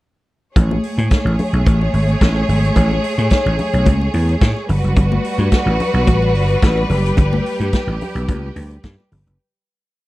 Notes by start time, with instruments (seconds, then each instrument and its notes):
0.56 slap bass A1, string section A3 G#4 C#5, kick, closed hi-hat, low conga
0.71 muted conga, high conga
0.83 open hi-hat
0.98 slap bass A2, closed hi-hat, high conga
1.11 kick, snare, closed hi-hat
1.25 slap bass A1, muted conga
1.39 open hi-hat, low conga
1.53 slap bass B1, closed hi-hat
1.66 slap bass A1, kick, closed hi-hat, high conga
1.81 muted conga
1.93 slap bass G#1, open hi-hat
2.09 closed hi-hat
2.21 slap bass A1, kick, snare, closed hi-hat, muted conga
2.37 muted conga
2.49 slap bass G#1, open hi-hat, low conga
2.64 closed hi-hat
2.76 slap bass A1, kick, closed hi-hat, low conga
2.91 high conga
3.04 open hi-hat
3.18 slap bass A2, closed hi-hat, high conga
3.30 kick, snare, closed hi-hat
3.46 slap bass A1, muted conga
3.59 open hi-hat, low conga
3.73 slap bass B1, closed hi-hat
3.86 slap bass C#2, kick, closed hi-hat, muted conga, high conga
4.01 muted conga
4.14 slap bass E2, open hi-hat
4.29 closed hi-hat
4.41 slap bass A2, kick, snare, closed hi-hat, muted conga
4.57 muted conga
4.69 slap bass G1, string section G3 F#4 B4, open hi-hat, low conga
4.84 slap bass F#1, closed hi-hat
4.96 slap bass G1, kick, closed hi-hat, muted conga, low conga
5.12 muted conga, high conga
5.24 open hi-hat
5.38 slap bass G2, closed hi-hat, high conga
5.52 kick, snare, closed hi-hat
5.66 slap bass A1, muted conga
5.80 open hi-hat, low conga
5.94 slap bass B1, closed hi-hat
6.07 slap bass A1, kick, closed hi-hat, high conga
6.22 muted conga
6.34 slap bass G1, open hi-hat
6.50 closed hi-hat
6.62 slap bass A1, kick, snare, closed hi-hat
6.77 muted conga
6.89 slap bass F#1, string section G4, open hi-hat, low conga
7.06 closed hi-hat
7.17 slap bass G1, kick, closed hi-hat, muted conga, low conga
7.33 muted conga, high conga
7.46 open hi-hat
7.60 slap bass G2, closed hi-hat, high conga
7.73 kick, snare, closed hi-hat, muted conga
7.87 slap bass A1, muted conga
8.01 open hi-hat, low conga
8.15 slap bass B1, closed hi-hat
8.28 slap bass C#2, kick, closed hi-hat, muted conga, high conga
8.56 slap bass D2, open hi-hat
8.71 closed hi-hat
8.83 slap bass G2, kick, snare, closed hi-hat
9.00 muted conga
9.12 slap bass G1, open hi-hat, low conga
9.27 slap bass F#1, closed hi-hat